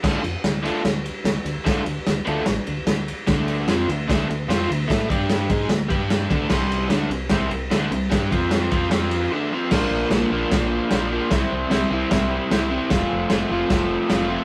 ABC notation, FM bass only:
X:1
M:4/4
L:1/8
Q:1/4=149
K:Dm
V:1 name="FM bass" clef=bass
D,, F,, D,,2 D,,2 D,, D,, | D,, D,, D,, D,, A,,, D,, D,,2 | D,,2 F,, D,, D,, D,, F,, D,, | A,, G,,2 ^G,, D,, =G,,2 D,, |
C,,2 D,, C,, C,, C,, D,, C,, | G,, F,,2 F,, F,,2 z2 | B,,, B,,, B,,, B,,, B,,,2 B,,,2 | C,, C,, C,, C,, C,,2 C,,2 |
F,,, F,,, F,,, F,,, F,,,2 F,,,2 |]